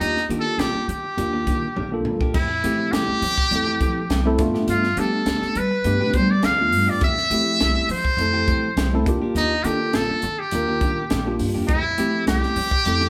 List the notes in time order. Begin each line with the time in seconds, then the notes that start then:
Already playing: A#3 D4 F4 G4
0.00 D#2 D#4, closed hi-hat
0.17 muted clean electric guitar stroke, snare
0.29 D#3 A#3 D4 F4 G4, closed hi-hat
0.40 A4
0.46 muted clean electric guitar stroke
0.58 A#1 G4, snare, closed hi-hat
0.74 muted upright bass stroke, muted clean electric guitar stroke
0.88 D#3 G4, muted clean electric guitar stroke, closed hi-hat
1.04 muted clean electric guitar stroke
1.17 D#2 A#3 D4 F4 G4, muted clean electric guitar stroke, closed hi-hat
1.33 D#3 A#3 D4 G4
1.46 D#3 A#3 D4 G4, kick, closed hi-hat
1.76 A#1 D#3 A#3 D4 G4, high tom
1.92 A#3 D4 F4 A4, muted clean electric guitar stroke
2.05 D#2, muted clean electric guitar stroke, mid tom
2.21 A#3 D4 G4, kick
2.34 F2 E3 A3 C4 E4 G4, kick, crash
2.51 muted clean electric guitar stroke
2.64 E3 F3 A3 C4 E4 G4, closed hi-hat
2.79 muted clean electric guitar stroke
2.92 C2 G4, snare, closed hi-hat
3.08 muted upright bass stroke, muted clean electric guitar stroke
3.22 F3, muted clean electric guitar stroke, open hi-hat
3.38 muted clean electric guitar stroke, kick
3.51 F2 A3 C4 E4 A4, muted clean electric guitar stroke, closed hi-hat
3.67 E3 A3 C4 G4
3.80 E3 F3 A3 C4 G4, kick, closed hi-hat
4.10 C2 E3 A3 C4 G4, snare, closed hi-hat
4.25 A3 C4 E4 A4, muted clean electric guitar stroke
4.38 G2 A3 B3 D4 F4, muted clean electric guitar stroke, kick, snare, closed hi-hat
4.54 B3 D4 G4, snare
4.68 G2 F4, closed hi-hat
4.84 muted clean electric guitar stroke, snare
4.97 F3 G3 A3 B3 D4 G4 A4, closed hi-hat
5.13 muted clean electric guitar stroke
5.26 D2, snare, closed hi-hat
5.42 muted clean electric guitar stroke, muted upright bass stroke, snare
5.55 G3 B4, muted clean electric guitar stroke, closed hi-hat
5.71 muted clean electric guitar stroke
5.84 G2 A3 B3 D4 G4, muted clean electric guitar stroke, closed hi-hat
6.00 F3 B3 D4 G4
6.13 F3 G3 B3 D4 G4 C5, kick, closed hi-hat
6.31 D5
6.43 D2 F3 B3 D4 G4 F5, snare, closed hi-hat
6.59 A3 B3 D4 F4, muted clean electric guitar stroke
6.72 G2, muted clean electric guitar stroke, open hi-hat
6.87 B3 D4 G4 D5
7.01 F2 E3 A3 C4 G4 E5, kick, closed hi-hat
7.17 muted clean electric guitar stroke, snare
7.30 E3 F3 A3 C4 E4 G4, closed hi-hat
7.46 muted clean electric guitar stroke
7.60 C2, snare, closed hi-hat
7.76 muted clean electric guitar stroke
7.89 F3 C5, muted clean electric guitar stroke, open hi-hat
8.04 muted clean electric guitar stroke, kick
8.17 F2 A3 C4 E4, muted clean electric guitar stroke, closed hi-hat
8.21 A4
8.34 E3 A3 C4 G4
8.48 E3 F3 A3 C4 G4, kick, closed hi-hat
8.77 C2 E3 A3 C4 G4, snare, closed hi-hat
8.92 A3 C4 E4 A4, muted clean electric guitar stroke
9.06 D#2 A#3 D4 F4 G4, muted clean electric guitar stroke, kick, closed hi-hat
9.22 A#3 D4 G4
9.35 D#2 D#4, closed hi-hat
9.51 muted clean electric guitar stroke
9.64 D#3 A#3 D4 F4 G4 A4, closed hi-hat
9.93 A#1 A4, snare, closed hi-hat
10.09 muted upright bass stroke, muted clean electric guitar stroke
10.22 D#3, muted clean electric guitar stroke, closed hi-hat
10.39 G4, muted clean electric guitar stroke
10.51 D#2 A#3 D4 F4 A#4, muted clean electric guitar stroke, closed hi-hat
10.68 D#3 A#3 D4 G4
10.81 D#3 A#3 D4 G4, kick, closed hi-hat
11.10 A#1 D#3 A#3 D4 G4, snare, closed hi-hat
11.26 A#3 D4 F4 G4, muted clean electric guitar stroke
11.39 G2, muted clean electric guitar stroke, open hi-hat
11.54 F2 A#3 D4 G4
11.68 F2 E3 A3 C4 E4 G4, kick, closed hi-hat
11.84 muted clean electric guitar stroke
11.98 E3 F3 A3 C4 E4 G4, closed hi-hat
12.13 muted clean electric guitar stroke
12.27 C2 G4, snare, closed hi-hat
12.43 muted clean electric guitar stroke, muted upright bass stroke, snare
12.56 F3, muted clean electric guitar stroke, open hi-hat
12.71 muted clean electric guitar stroke, kick
12.85 F2 A3 C4 E4 A4, muted clean electric guitar stroke, closed hi-hat
13.01 E3 A3 C4 G4, snare